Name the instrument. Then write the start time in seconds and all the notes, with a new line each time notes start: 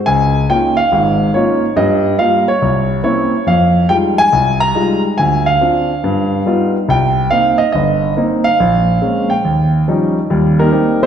grand piano
0.06 C#2 G#5
0.49 A#3 C#4 D#4 F4 G5
0.77 F5
0.92 G#1 G#2
1.34 A#3 C#4 D#4 F4 C#5
1.76 G2 G3 D#5
2.19 G3 A#3 F4 F5
2.48 C#5
2.62 C2
3.03 A#3 C4 C#4 E4 C#5
3.47 F2 F5
3.89 G3 G#3 D#4 F4 G5
4.18 G#5
4.33 C2
4.60 A#5
4.75 G3 G#3 D#4 F4
5.18 D2 G#5
5.46 F5
5.61 C4 D4 F4
6.04 G2
6.46 G3 B3 D#4 F4
6.89 C2 G5
7.31 A#3 C4 D#4 F5
7.58 D#5
7.72 G1 D#5
8.17 A#3 C4 D#4
8.44 F5
8.60 A#1
9.02 G#3 A#3 C4 C#4
9.30 G5
9.45 D#2
9.88 F3 G3 C#4 D#4
10.30 D#2 G3
10.59 A#3 D#4 G4 A#4
10.72 G3 C4 D#4
11.03 G4 C5